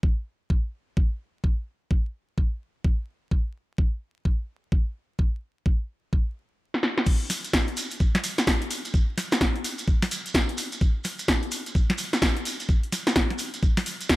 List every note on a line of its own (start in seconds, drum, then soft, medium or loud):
0.03 kick loud
0.50 kick loud
0.97 kick loud
1.44 kick loud
1.91 kick loud
2.38 kick loud
2.84 kick loud
3.31 kick loud
3.78 kick loud
4.25 kick loud
4.72 kick loud
5.19 kick loud
5.66 kick loud
6.13 kick loud
6.74 snare soft
6.83 snare medium
6.98 snare medium
7.06 kick loud
7.06 crash medium
7.06 shekere soft
7.30 snare soft
7.30 open hi-hat loud
7.30 shekere loud
7.44 closed hi-hat medium
7.44 shekere soft
7.53 kick loud
7.53 snare loud
7.53 shekere soft
7.68 closed hi-hat soft
7.77 open hi-hat loud
7.77 shekere medium
7.90 closed hi-hat medium
7.90 shekere soft
8.00 kick loud
8.00 shekere soft
8.15 snare medium
8.15 closed hi-hat medium
8.24 open hi-hat loud
8.24 shekere loud
8.38 snare medium
8.38 closed hi-hat medium
8.38 shekere medium
8.47 kick loud
8.47 snare loud
8.47 open hi-hat medium
8.62 closed hi-hat medium
8.71 open hi-hat loud
8.71 shekere medium
8.85 closed hi-hat medium
8.85 shekere medium
8.94 kick loud
8.94 shekere soft
9.18 snare soft
9.18 open hi-hat loud
9.18 shekere medium
9.32 snare medium
9.32 closed hi-hat medium
9.32 shekere medium
9.41 kick loud
9.41 snare loud
9.56 closed hi-hat soft
9.64 open hi-hat loud
9.64 shekere loud
9.78 closed hi-hat medium
9.78 shekere medium
9.88 kick loud
9.88 shekere soft
10.02 snare medium
10.02 open hi-hat medium
10.11 open hi-hat loud
10.11 shekere loud
10.26 closed hi-hat medium
10.26 shekere medium
10.34 kick loud
10.34 snare loud
10.49 closed hi-hat medium
10.58 open hi-hat loud
10.58 shekere loud
10.72 closed hi-hat medium
10.72 shekere medium
10.81 kick loud
10.81 shekere soft
11.04 snare soft
11.04 open hi-hat loud
11.04 shekere medium
11.19 closed hi-hat medium
11.19 shekere medium
11.28 kick loud
11.28 snare loud
11.43 closed hi-hat soft
11.51 open hi-hat loud
11.51 shekere loud
11.66 closed hi-hat medium
11.66 shekere soft
11.75 kick loud
11.75 shekere soft
11.90 snare medium
11.90 closed hi-hat soft
11.98 open hi-hat loud
11.98 shekere loud
12.13 snare medium
12.13 closed hi-hat medium
12.13 shekere medium
12.22 kick loud
12.22 snare loud
12.22 open hi-hat medium
12.37 closed hi-hat soft
12.45 open hi-hat loud
12.45 shekere loud
12.60 closed hi-hat medium
12.60 shekere medium
12.69 kick loud
12.69 shekere soft
12.83 closed hi-hat soft
12.92 snare soft
12.92 open hi-hat loud
12.92 shekere medium
13.07 snare medium
13.07 closed hi-hat medium
13.07 shekere medium
13.16 kick loud
13.16 snare loud
13.30 snare soft
13.30 closed hi-hat soft
13.38 open hi-hat loud
13.38 shekere medium
13.54 closed hi-hat medium
13.54 shekere soft
13.63 kick loud
13.63 shekere soft
13.77 snare medium
13.77 open hi-hat medium
13.86 open hi-hat loud
13.86 shekere medium
14.01 closed hi-hat medium
14.01 shekere medium
14.09 kick loud
14.09 snare loud